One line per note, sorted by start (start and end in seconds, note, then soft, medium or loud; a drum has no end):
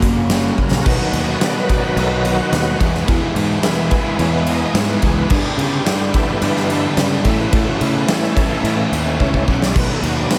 0.00 0.50 F#1 loud
0.00 0.83 F#2 medium
0.00 0.28 F#2 medium
0.00 0.83 C#3 medium
0.00 0.84 C#3 medium
0.00 0.28 C#3 medium
0.00 0.84 F#3 medium
0.00 0.84 A#3 loud
0.00 0.85 A#3 loud
0.00 0.85 A#3 medium
0.00 0.19 C#4 medium
0.00 0.84 C#4 loud
0.00 0.85 C#4 loud
0.00 0.85 C#4 medium
0.00 0.19 F#4 medium
0.00 0.84 F#4 medium
0.00 0.85 F#4 medium
0.00 0.19 A#4 medium
0.00 0.85 A#4 medium
0.00 kick medium
0.00 closed hi-hat medium
0.29 0.57 F#2 medium
0.29 0.57 C#3 medium
0.29 0.57 F#3 loud
0.29 0.74 C#4 medium
0.29 0.75 F#4 medium
0.29 0.74 C#5 medium
0.29 snare loud
0.29 closed hi-hat medium
0.58 0.83 F#2 medium
0.58 0.83 C#3 medium
0.58 kick medium
0.71 0.82 A#1 medium
0.71 snare medium
0.83 0.97 B1 medium
0.83 1.94 B2 loud
0.83 1.39 B2 medium
0.83 1.12 D#3 loud
0.83 2.77 D#3 medium
0.83 1.94 F#3 medium
0.83 1.13 F#3 medium
0.83 2.77 F#3 medium
0.83 1.96 B3 loud
0.83 1.30 B3 medium
0.83 1.30 D#4 medium
0.83 1.95 D#4 loud
0.83 1.15 D#4 loud
0.83 1.30 F#4 medium
0.83 1.96 F#4 loud
0.83 1.30 B4 loud
0.83 kick loud
0.83 crash loud
0.88 1.15 B3 loud
0.88 2.77 B3 medium
0.88 1.16 F#4 medium
1.12 1.35 D#2 medium
1.12 1.40 B2 medium
1.12 1.40 D#3 medium
1.12 1.41 F#3 medium
1.12 1.43 B3 medium
1.12 1.42 D#4 medium
1.12 ride medium
1.17 1.43 F#4 medium
1.40 1.96 B2 medium
1.40 1.68 D#3 loud
1.40 1.69 F#3 medium
1.40 1.85 B3 medium
1.40 1.70 B3 loud
1.40 1.86 D#4 medium
1.40 1.71 D#4 loud
1.40 1.86 F#4 medium
1.40 1.69 F#4 loud
1.40 1.86 B4 medium
1.40 1.43 C#5 medium
1.40 1.56 D5 loud
1.40 snare loud
1.40 ride loud
1.57 1.69 B4 medium
1.69 1.97 B2 medium
1.69 1.98 D#3 medium
1.69 1.98 F#3 medium
1.69 1.99 B3 medium
1.69 1.99 D#4 medium
1.69 1.84 D5 medium
1.69 muted overdriven electric guitar stroke medium
1.69 kick medium
1.69 ride medium
1.81 2.12 F#3 medium
1.81 2.10 B3 medium
1.81 2.07 F#4 medium
1.86 1.98 B4 medium
1.95 2.40 B1 loud
1.95 2.77 B2 medium
1.95 2.23 B2 medium
1.95 2.78 F#3 medium
1.95 2.81 B3 medium
1.95 2.41 B3 medium
1.95 2.78 D#4 medium
1.95 2.41 D#4 medium
1.95 2.41 F#4 medium
1.95 2.79 F#4 medium
1.95 2.41 B4 medium
1.95 ride loud
1.99 2.23 D#3 medium
1.99 2.25 F#3 medium
1.99 2.26 B3 medium
1.99 2.25 D#4 medium
1.99 2.12 A4 medium
2.09 2.25 B3 medium
2.09 2.26 F#4 medium
2.13 2.23 F#3 medium
2.13 2.25 F#4 medium
2.23 2.51 B2 loud
2.23 2.50 D#3 medium
2.23 2.38 F#3 medium
2.23 2.37 B3 medium
2.23 2.53 D#4 loud
2.23 2.26 F4 medium
2.23 2.34 F#4 medium
2.23 ride medium
2.28 2.80 F#4 loud
2.36 2.51 F#3 medium
2.36 2.53 B3 medium
2.36 2.52 F#4 medium
2.50 2.74 D#2 medium
2.50 2.77 B2 medium
2.50 2.77 D#3 loud
2.50 2.67 F#3 medium
2.50 2.80 B3 medium
2.50 2.66 B3 loud
2.50 2.81 D#4 medium
2.50 2.81 F#4 medium
2.50 2.63 F#4 loud
2.50 2.80 B4 medium
2.50 snare loud
2.50 ride loud
2.54 2.79 D#4 loud
2.64 2.79 F#3 medium
2.64 2.80 B3 medium
2.64 2.77 F#4 medium
2.78 3.89 E2 loud
2.78 3.02 E2 medium
2.78 3.89 B2 medium
2.78 3.06 E3 loud
2.78 3.91 E3 medium
2.78 2.94 G#3 loud
2.78 2.94 B3 loud
2.78 3.90 B3 medium
2.78 3.47 B3 medium
2.78 2.92 E4 loud
2.78 3.48 E4 medium
2.78 3.89 E4 loud
2.78 3.48 G#4 medium
2.78 3.88 G#4 loud
2.78 3.48 B4 medium
2.78 kick medium
2.78 ride medium
2.92 3.06 G#3 medium
2.92 3.08 B3 medium
2.92 3.09 E4 medium
2.92 snare soft
3.06 3.19 E2 loud
3.06 3.34 E3 medium
3.06 3.34 G#3 loud
3.06 3.36 B3 medium
3.06 3.38 E4 loud
3.06 kick loud
3.06 ride loud
3.34 3.57 G#2 medium
3.34 3.62 E3 medium
3.34 3.62 G#3 medium
3.34 3.64 B3 medium
3.34 ride medium
3.38 3.65 E4 loud
3.62 3.91 E3 medium
3.62 4.43 E3 medium
3.62 3.91 G#3 loud
3.62 4.44 G#3 medium
3.62 4.08 B3 medium
3.62 3.91 B3 loud
3.62 4.44 B3 medium
3.62 4.08 E4 medium
3.62 3.92 E4 loud
3.62 4.08 G#4 medium
3.62 4.08 A#4 loud
3.62 snare loud
3.62 ride loud
3.89 5.01 E2 medium
3.89 5.01 B2 medium
3.89 4.19 E3 medium
3.89 5.29 E3 medium
3.89 4.19 G#3 medium
3.89 5.00 B3 medium
3.89 4.19 B3 medium
3.89 5.30 E4 medium
3.89 4.21 E4 medium
3.89 5.00 G#4 medium
3.89 muted overdriven electric guitar stroke soft
3.89 kick medium
3.89 ride medium
4.04 4.34 G#3 medium
4.04 4.33 B3 medium
4.04 4.31 E4 medium
4.19 4.62 E2 medium
4.19 4.47 E3 medium
4.19 4.47 G#3 medium
4.19 4.64 B3 medium
4.19 4.47 B3 medium
4.19 4.64 E4 medium
4.19 4.49 E4 medium
4.19 4.64 G#4 medium
4.19 4.64 C#5 loud
4.19 ride loud
4.31 4.47 B3 medium
4.31 4.49 E4 medium
4.36 4.46 G#3 medium
4.46 4.73 E3 medium
4.46 4.62 G#3 medium
4.46 4.61 B3 medium
4.46 4.59 E4 medium
4.46 4.75 D#5 loud
4.46 ride medium
4.60 4.74 G#3 medium
4.60 4.75 B3 medium
4.60 4.76 E4 medium
4.73 4.96 G#2 medium
4.73 5.00 E3 loud
4.73 4.89 G#3 loud
4.73 5.19 B3 medium
4.73 4.87 B3 loud
4.73 5.19 E4 medium
4.73 4.87 E4 loud
4.73 5.19 G#4 medium
4.73 5.19 B4 medium
4.73 4.88 C#5 medium
4.73 snare loud
4.73 ride loud
4.87 5.01 G#3 medium
4.87 5.02 B3 medium
4.87 5.04 E4 medium
4.87 5.02 B4 medium
5.00 5.24 C#2 medium
5.00 5.30 E3 medium
5.00 5.18 G#3 medium
5.00 5.16 B3 medium
5.00 5.15 E4 medium
5.00 5.16 G#4 medium
5.00 kick medium
5.00 ride medium
5.16 5.30 G#3 medium
5.16 5.29 B3 medium
5.16 5.32 E4 medium
5.16 5.29 B4 medium
5.28 6.39 G2 medium
5.28 5.83 G2 loud
5.28 5.41 G2 loud
5.28 6.39 D3 medium
5.28 5.56 D3 loud
5.28 6.39 G3 loud
5.28 5.57 G3 medium
5.28 6.40 B3 loud
5.28 5.58 B3 loud
5.28 5.74 D4 medium
5.28 6.40 D4 loud
5.28 5.59 D4 loud
5.28 5.74 E4 medium
5.28 5.74 G4 medium
5.28 6.40 G4 loud
5.28 5.43 G#4 medium
5.28 5.74 B4 medium
5.28 kick loud
5.28 crash loud
5.45 5.58 G4 medium
5.57 5.84 G2 medium
5.57 5.79 C#3 medium
5.57 5.85 D3 medium
5.57 5.86 G3 medium
5.57 5.86 B3 medium
5.57 5.87 D4 medium
5.57 6.67 G4 loud
5.57 ride medium
5.85 6.41 G2 loud
5.85 6.13 D3 loud
5.85 6.13 G3 loud
5.85 6.13 B3 loud
5.85 6.30 D4 medium
5.85 6.13 D4 loud
5.85 6.30 E4 medium
5.85 6.30 G4 medium
5.85 6.30 D5 medium
5.85 snare loud
5.85 ride loud
6.14 6.42 G2 medium
6.14 6.42 D3 medium
6.14 6.93 E3 medium
6.14 6.43 G3 medium
6.14 6.94 A3 soft
6.14 6.94 B3 medium
6.14 6.43 B3 medium
6.14 6.43 D4 loud
6.14 muted overdriven electric guitar stroke medium
6.14 kick medium
6.14 ride medium
6.27 6.56 G3 medium
6.27 6.54 B3 medium
6.27 6.53 D4 medium
6.41 7.23 G2 medium
6.41 6.85 G2 loud
6.41 6.69 G2 medium
6.41 7.23 D3 medium
6.41 6.70 D3 medium
6.41 7.24 G3 medium
6.41 6.70 G3 medium
6.41 7.24 B3 medium
6.41 6.70 B3 medium
6.41 6.86 D4 medium
6.41 7.24 D4 medium
6.41 6.71 D4 loud
6.41 6.86 E4 medium
6.41 6.86 G4 medium
6.41 7.24 G4 medium
6.41 6.86 B4 loud
6.41 ride loud
6.54 6.68 G3 medium
6.54 6.70 B3 medium
6.54 6.70 D4 medium
6.54 snare soft
6.68 6.96 G2 loud
6.68 6.96 D3 medium
6.68 6.84 G3 medium
6.68 6.82 B3 medium
6.68 6.80 D4 medium
6.68 ride medium
6.82 6.97 G3 medium
6.82 6.98 B3 medium
6.82 6.98 D4 medium
6.96 7.23 G2 medium
6.96 7.19 C#3 loud
6.96 7.23 D3 medium
6.96 7.12 G3 medium
6.96 7.11 B3 loud
6.96 7.25 D4 medium
6.96 7.08 D4 loud
6.96 7.23 E4 medium
6.96 7.25 G4 medium
6.96 7.25 B4 medium
6.96 snare loud
6.96 ride loud
7.09 7.24 G3 medium
7.09 7.24 B3 medium
7.09 7.22 D4 medium
7.24 7.49 A2 medium
7.24 8.34 A2 medium
7.24 7.46 A2 medium
7.24 8.34 E3 medium
7.24 7.51 E3 medium
7.24 8.35 A3 loud
7.24 7.40 A3 loud
7.24 7.91 C#4 medium
7.24 8.35 C#4 loud
7.24 7.38 C#4 loud
7.24 7.91 E4 medium
7.24 7.36 E4 loud
7.24 7.91 A4 medium
7.24 8.34 A4 loud
7.24 7.91 C#5 medium
7.24 7.39 E5 loud
7.24 kick medium
7.24 ride medium
7.37 7.52 A3 medium
7.37 7.52 C#4 medium
7.37 7.53 E4 medium
7.37 7.53 B4 medium
7.51 8.06 A2 loud
7.51 7.64 A2 loud
7.51 7.78 E3 loud
7.51 7.80 A3 medium
7.51 7.81 C#4 loud
7.51 7.82 E4 loud
7.51 kick loud
7.51 ride loud
7.55 7.67 A4 medium
7.69 7.81 F#4 medium
7.79 8.08 A2 medium
7.79 8.02 C#3 medium
7.79 8.07 E3 medium
7.79 8.08 A3 medium
7.79 8.09 C#4 medium
7.79 7.94 E4 medium
7.79 8.09 E4 medium
7.79 ride medium
7.95 8.08 B3 medium
8.08 8.64 A2 loud
8.08 8.35 E3 medium
8.08 8.35 E3 loud
8.08 8.35 A3 loud
8.08 8.36 A3 medium
8.08 8.53 C#4 medium
8.08 8.35 C#4 loud
8.08 8.46 C#4 medium
8.08 8.53 E4 medium
8.08 8.36 E4 loud
8.08 8.53 A4 medium
8.08 8.53 C#5 medium
8.08 snare loud
8.08 ride loud
8.23 snare soft
8.35 8.64 A2 medium
8.35 9.47 A2 medium
8.35 8.88 E3 medium
8.35 8.64 E3 medium
8.35 9.46 E3 medium
8.35 9.46 A3 medium
8.35 8.91 A3 medium
8.35 8.65 A3 medium
8.35 9.46 C#4 medium
8.35 8.65 C#4 medium
8.35 8.66 E4 loud
8.35 9.45 A4 medium
8.35 muted overdriven electric guitar stroke medium
8.35 kick medium
8.35 ride medium
8.49 8.79 A3 medium
8.49 8.77 C#4 medium
8.49 8.75 E4 medium
8.63 8.85 A2 medium
8.63 8.92 A2 medium
8.63 8.93 E3 medium
8.63 8.93 A3 medium
8.63 9.08 C#4 medium
8.63 8.94 C#4 medium
8.63 9.08 E4 medium
8.63 8.94 E4 medium
8.63 9.08 A4 medium
8.63 9.08 D#5 medium
8.63 ride loud
8.76 8.90 A3 medium
8.76 8.91 C#4 medium
8.76 8.92 E4 medium
8.90 9.17 D#2 medium
8.90 9.19 A2 loud
8.90 9.18 E3 medium
8.90 9.06 A3 medium
8.90 9.04 C#4 medium
8.90 9.03 E4 medium
8.90 ride medium
9.04 9.19 A3 medium
9.04 9.19 C#4 medium
9.04 9.20 E4 medium
9.18 9.45 C#2 medium
9.18 9.60 A2 medium
9.18 9.44 E3 medium
9.18 9.45 E3 medium
9.18 9.34 A3 medium
9.18 9.45 A3 soft
9.18 9.64 C#4 medium
9.18 9.33 C#4 medium
9.18 9.46 C#4 medium
9.18 9.64 E4 medium
9.18 9.31 E4 loud
9.18 9.64 A4 medium
9.18 9.64 C#5 loud
9.18 kick medium
9.32 9.45 A3 medium
9.32 9.46 C#4 medium
9.32 9.48 E4 medium
9.32 kick medium
9.45 9.73 B1 medium
9.45 9.73 A2 medium
9.45 9.72 E3 medium
9.45 9.62 A3 medium
9.45 9.61 C#4 medium
9.45 kick medium
9.49 9.58 E4 medium
9.49 9.62 F#5 loud
9.59 9.75 A3 medium
9.59 9.74 C#4 medium
9.59 9.73 E4 medium
9.59 9.75 D5 medium
9.59 snare loud
9.74 9.86 B1 medium
9.74 10.39 B2 medium
9.74 10.30 B2 loud
9.74 10.01 D#3 medium
9.74 10.39 F#3 medium
9.74 10.03 F#3 medium
9.74 10.19 B3 medium
9.74 10.39 B3 loud
9.74 10.04 B3 loud
9.74 10.19 D#4 medium
9.74 10.39 D#4 loud
9.74 10.05 D#4 loud
9.74 10.20 F#4 medium
9.74 10.39 F#4 medium
9.74 10.04 F#4 loud
9.74 10.20 B4 medium
9.74 kick loud
9.74 crash loud
9.74 splash medium
9.79 9.90 B4 medium
9.91 10.03 A4 medium
10.02 10.24 D#2 medium
10.02 10.29 B2 medium
10.02 10.31 D#3 medium
10.02 10.32 F#3 medium
10.02 10.33 B3 medium
10.02 10.33 D#4 medium
10.02 10.31 F#4 medium
10.02 10.17 F#4 medium
10.02 ride medium
10.19 10.31 D4 medium
10.31 10.39 B2 medium
10.31 10.39 D#3 medium
10.31 10.39 F#3 loud
10.31 10.39 B3 medium
10.31 10.39 B3 loud
10.31 10.39 D#4 medium
10.31 10.39 D#4 loud
10.31 10.39 F#4 medium
10.31 10.39 F#4 loud
10.31 10.39 B4 medium
10.31 snare loud
10.31 ride loud